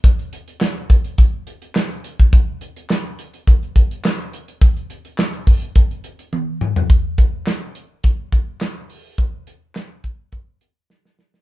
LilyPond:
\new DrumStaff \with { instrumentName = "Drums" } \drummode { \time 4/4 \tempo 4 = 105 <hh bd>16 hh16 hh16 hh16 <hc sn>16 hh16 <hh bd>16 hh16 <hh bd>8 hh16 hh16 <hc sn>16 hh16 hh16 <hh bd>16 | <hh bd>8 hh16 hh16 <hc sn>8 hh16 hh16 <hh bd>16 hh16 <hh bd>16 hh16 <hc sn>16 hh16 hh16 hh16 | <hh bd>16 hh16 hh16 hh16 <hc sn>16 hh16 <hho bd>16 hh16 <hh bd>16 hh16 hh16 hh16 tommh8 toml16 tomfh16 | <hh bd>8 <hh bd>8 <hc hh sn>8 hh8 <hh bd>8 <hh bd>8 <hc hh sn>8 hho8 |
<hh bd>8 hh8 <hc hh sn>8 <hh bd>8 <hh bd>8 hh8 sn16 sn16 sn16 sn16 | }